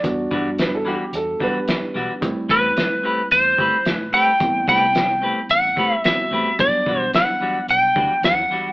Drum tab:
HH |x-x-x-x-|x-x-x-x-|x-x-x-x-|x-x-x-x-|
SD |--o---o-|--o---o-|--o---o-|--o---o-|
BD |oo---o--|oo---o--|oo---o--|oo---o--|